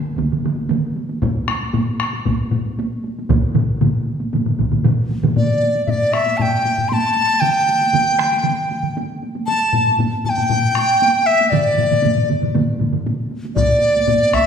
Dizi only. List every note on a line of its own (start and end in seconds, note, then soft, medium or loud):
5.37 5.85 D5 medium
5.86 6.14 D5 medium
5.86 5.91 E5 medium
6.13 6.39 E5 medium
6.37 6.43 A5 medium
6.42 6.90 G5 medium
6.89 6.94 C6 medium
6.93 7.42 A5 medium
7.40 8.96 G5 medium
9.46 9.95 A5 medium
10.25 10.30 A5 medium
10.29 11.28 G5 loud
11.26 11.52 E5 medium
11.50 12.28 D5 medium
13.56 14.36 D5 medium
14.34 14.47 E5 medium